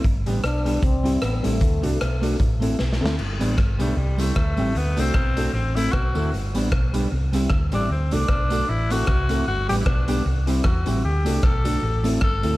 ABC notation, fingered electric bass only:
X:1
M:4/4
L:1/8
Q:"Swing" 1/4=153
K:G
V:1 name="Fingered electric bass" clef=bass
G,,, A,,, B,,,2 C,,2 A,,, A,,, | D,, C,, B,,,2 A,,,2 B,,, D,, | G,,, A,,, G,,, B,,, C,,2 D,, A,,, | D,, C,, B,,,2 A,,,2 B,,, D,, |
G,,, A,,, B,,,2 C,,2 D,, A,,, | D,, C,, B,,,2 A,,,2 C,,2 | G,,, A,,, B,,,2 C,,2 E,, A,,, | D,, C,, B,,,2 A,,,2 G,,, D,, |]